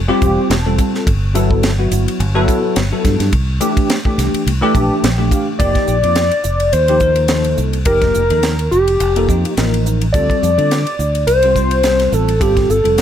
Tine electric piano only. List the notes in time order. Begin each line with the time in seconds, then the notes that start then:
0.08 G3 C4 F4 G4
0.50 A5
0.66 G3 C4 F4 A4
1.34 F#3 B3 E4 A4
1.79 F#3 B3 E4 F#4
2.35 F#3 B3 E4 A4
2.92 F#3 B3 E4 A4
3.60 E3 A3 D4 G4
4.05 E3 A3 D4 G4
4.61 E3 A3 D4 G4
4.75 A5
5.04 G5
5.18 E3 A3 D4 G4
5.31 F5
5.60 F3 A#3 D#4 G4
6.03 F3 A#3 D#4 F4
6.31 D#4 A#4
6.74 D#4 A4
6.89 F3 A#3 D#4 G4
7.01 F3 A#3 D#4 A#4
7.29 F3 A#3 D#4 A4
7.86 F3 A#3 D#4 G4
8.30 F3 A#3 D#4 A4
8.59 D#4 G4
9.00 D#4 G4
9.16 F3 A#3 D#4 A4
9.29 F3 A#3 D#4 F4
9.57 F3 A#3 D#4 A#4
10.14 G3 C4 F4 A4
10.57 G3 C4 F4 A4
10.87 F4 G4
11.27 F4 A4
11.44 G3 C4 F4 C5
11.56 G3 C4 F4 C5
11.84 G3 C4 F4 A4
12.40 G3 C4 F4 A4
12.84 G3 C4 F4 A4